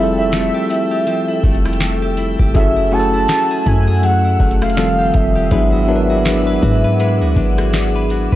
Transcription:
Already playing: F1 F3 G3 A3 C4 E4 F4 G4 G#4 A4 E5 G5 E6
0.03 A4
0.18 E4 E5
0.32 A3, snare, closed hi-hat
0.54 G4
0.70 E4, closed hi-hat
0.91 G4
1.07 F3 G4, closed hi-hat
1.28 E4
1.44 F1 A3, kick, closed hi-hat
1.55 closed hi-hat
1.65 E4, cross-stick, closed hi-hat
1.73 closed hi-hat
1.80 A3, snare, closed hi-hat
2.02 G4
2.17 E4, closed hi-hat
2.39 F1 G4, kick
2.54 F#1 F#3 A3 C#4 E4 F#4 G#4 A4 E5 F#5, kick, closed hi-hat
2.77 E4
2.91 A3 C#4 E4 F#4 G#4 A5
3.00 A4
3.14 E4
3.28 A3, snare, closed hi-hat
3.51 G#4
3.66 F#2 E4 G#5, kick, closed hi-hat
3.88 G#4
4.03 F#3 G#4 F#5, closed hi-hat
4.25 E4
4.40 F1 A3, kick, closed hi-hat
4.51 closed hi-hat
4.62 E4 F5, cross-stick, closed hi-hat
4.70 closed hi-hat
4.76 D#3 F3 G3 C4 F4 A4 G5 D#6, snare, closed hi-hat
4.99 G4
5.14 F1 E5, kick, closed hi-hat
5.36 G4
5.51 G#1 F#3 G#3 B3 D4 E4 G#4 B4 E5 F#5 D6, kick, closed hi-hat
5.72 F#4
5.88 F#3 B3 D4 E4 A#4
5.96 B4
6.10 F#4
6.25 D4, snare, closed hi-hat
6.47 B4
6.62 G#2 F#4, kick, closed hi-hat
6.84 B4
7.00 G#3 B4, closed hi-hat
7.21 D2 F#4
7.36 G#1 D4, kick, closed hi-hat
7.58 F#4, cross-stick, closed hi-hat
7.73 D4, snare, closed hi-hat
7.96 B4
8.10 F#4, closed hi-hat
8.32 G#1 B4, kick

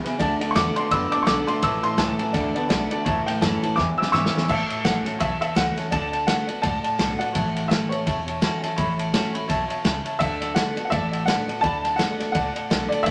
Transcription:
Already playing: C#3 G#4
0.04 E2 B2 B4 E5 G#5, snare, ride
0.19 D2 D3 A3 D5 F#5 A5, kick, ride
0.39 D3 A3 D5 F#5 A5, muted upright bass stroke, ride
0.51 D3 D5 C#6
0.55 E2 D3 A3 B3 F#4 A5 D6, snare, ride
0.76 D3 A3 B3 F#4 D5 F#5 A5 C6, ride
0.90 F#2 A2 D3 B3 D5 F#5 B5 E6, kick, ride
1.11 D3 B3 D5 F#5 A5 D6, ride
1.23 B1 D3 A3 D5 F#5 C#6
1.27 A3 B3 F#4 A5 D6, snare, ride
1.47 D3 A3 B3 F#4 D5 F#5 A5 C6, ride
1.61 A1 A2 E3 C#5 E5 A5 E6, kick, ride
1.82 A2 E3 C#5 E5 A5 C6, muted upright bass stroke, ride
1.97 C#2 A2 E3 A3 C#4 F#4 E5 A5, snare, ride
2.18 A2 E3 C#4 F#4 C#5 E5 A5, ride
2.32 D2 D3 A3 D5 F#5 A5, kick, snare, ride
2.54 D3 B3 D5 F#5 A5, muted upright bass stroke, ride
2.69 B1 D3 A3 B3 F#4 D5 F#5 A5, snare, ride
2.90 D3 A3 B3 F#4 D5 F#5 A5, muted upright bass stroke, ride
3.05 C#2 A2 E3 C#5 E5 A5, kick, ride
3.26 A2 E3 C#5 E5 G5 A5, muted upright bass stroke, snare, ride
3.40 F#2 A2 E3 A3 C#4 F#4 C#5 E5 A5, snare, ride
3.61 A2 E3 C#4 F#4 C#5 E5 A5, muted upright bass stroke, ride
3.76 E2 B2 B4 E5 G#5 D6, kick, snare
3.98 E2 C#3 B4 E5 G#5 E6, muted upright bass stroke
4.02 snare
4.12 E2 G#2 B2 E3 G#3 C#4 E4 B4 E5 G#5 C#6 E6, snare
4.26 snare
4.33 E2 B2 C#4 E4 B4 E5 G#5, muted upright bass stroke, snare
4.48 A1 A2 C#5 E5 A5, kick, crash
4.69 C#5 E5 A5, ride
4.84 A1 E3 A3 C#4 F#4 C#5 E5 F#5 A5, snare, ride
5.04 C#4 F#4 C#5 E5 A5, muted upright bass stroke, snare, ride
5.19 B1 E2 C#5 E5 A5, kick, ride
5.40 C#5 E5 A5, muted upright bass stroke, ride
5.55 C#2 E3 A3 C#4 F#4 C#5 E5 F#5, snare, ride
5.76 C#4 F#4 C#5 E5 A5, muted upright bass stroke, snare, ride
5.91 D2 D3 D5 F#5 A5, kick, ride
6.12 D5 F#5 A5, ride
6.27 D3 A3 B3 F#4 D5 F#5 A5, snare, ride
6.47 F#4 D5 F#5 A5, muted upright bass stroke, ride
6.51 B3
6.62 C#2 A2 D5 F#5 A5, kick, snare, ride
6.83 D5 F#5 A5, muted upright bass stroke, ride
6.98 B1 D3 A3 B3 F#4 D5 F#5 A5, snare, ride
7.19 B3 F#4 D5 F#5 A5, ride
7.33 A1 A2 C#5 E5 A5, kick, ride
7.54 C#5 E5 A5, ride
7.68 E3 A3 C#4 F#4 C#5 E5 A5, snare, ride
7.89 F#4 C#5 E5 A5, muted upright bass stroke, ride
7.93 C#4
8.05 E1 E2 C#5 E5 A5, kick, snare, ride
8.26 C#5 E5 A5, ride
8.41 E3 A3 C#4 F#4 C#5 E5 A5, snare, ride
8.61 C#4 F#4 C#5 E5 A5, muted upright bass stroke, snare, ride
8.76 A1 A2 C#5 E5 B5, kick, ride
8.97 C#5 E5 A5, ride
9.12 E3 A3 C#4 F#4 C#5 E5 A5, snare, ride
9.33 C#4 F#4 C#5 E5 B5, muted upright bass stroke, ride
9.48 B1 B2 C#5 E5 A5, kick, snare, ride
9.68 C#5 E5 A5, muted upright bass stroke, ride
9.83 C#2 C#3 C#5 E5 A5, snare, ride
10.04 C#5 E5 A5, ride
10.19 D2 D3 D5 E5 F#5 A5, kick, ride
10.40 D5 F#5 A5, snare, ride
10.55 D3 A3 B3 F#4 D5 F#5 A5, snare, ride
10.76 B3 F#4 D5 F#5 A5, muted upright bass stroke, ride
10.85 F#5
10.90 A1 A2 D5 E5 F#5 A5, kick, snare, ride
11.11 D5 F#5 A5, ride
11.26 D3 A3 B3 F#4 D5 F#5 A5, snare, ride
11.47 B3 F#4 D5 F#5 A5, muted upright bass stroke, ride
11.61 D2 D3 D5 F#5 A5 B5, kick, ride
11.83 D5 F#5 A5, snare, ride
11.96 D3 A3 B3 D5 F#5 A5, snare, ride
12.00 F#4
12.19 D5 F#5 A5, muted upright bass stroke, snare, ride
12.32 C#2 A2 D5 F#5 A5, kick, ride
12.55 D5 F#5 A5, ride
12.70 B1 D3 A3 B3 F#4 D5 F#5 A5, snare, ride
12.89 D5 F#5 A5, muted upright bass stroke, ride
13.03 A1 A2 E3 C#5 E5 A5, kick, ride

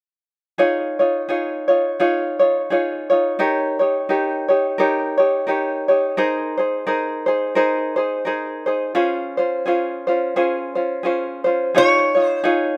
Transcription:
0.58 D#4 F4 G#4 C#5
0.99 D#4 F4 C#5
1.29 D#4 F4 G#4 C#5
1.68 D#4 F4 C#5
2.00 D#4 F4 G#4 C#5
2.39 D#4 F4 C#5
2.70 D#4 F4 G#4 C#5
3.10 D#4 F4 C#5
3.39 D#4 G4 A#4 C#5
3.79 D#4 G4 C#5
4.09 D#4 G4 A#4 C#5
4.48 D#4 G4 C#5
4.78 D#4 G4 A#4 C#5
5.18 D#4 G4 C#5
5.47 D#4 G4 A#4 C#5
5.88 D#4 G4 C#5
6.17 D#4 G#4 A#4 C5
6.58 D#4 G#4 C5
6.87 D#4 G#4 A#4 C5
7.26 D#4 G#4 C5
7.55 D#4 G#4 A#4 C5
7.96 D#4 G#4 C5
8.25 D#4 G#4 A#4 C5
8.66 D#4 G#4 C5
8.95 C#4 F4 G#4 C5
9.37 C#4 F4 C5
9.66 C#4 F4 G#4 C5
10.07 C#4 F4 C5
10.36 C#4 F4 G#4 C5
10.75 C#4 F4 C5
11.03 C#4 F4 G#4 C5
11.44 C#4 F4 C5
11.75 D#4 F4 G#4 C#5
12.15 D#4 F4 C#5
12.23 C5
12.44 D#4 F4 G#4 C#5

